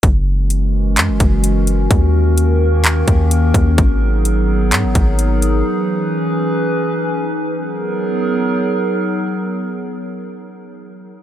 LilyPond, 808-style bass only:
\new Staff \with { instrumentName = "808-style bass" } { \clef bass \time 4/4 \key gis \minor \tempo 4 = 128 fis,,2 fis,16 fis,,16 fis,,4. | dis,2~ dis,8 dis,4 dis,8 | gis,,2 gis,16 gis,,16 gis,,4. | r1 |
r1 | r1 | }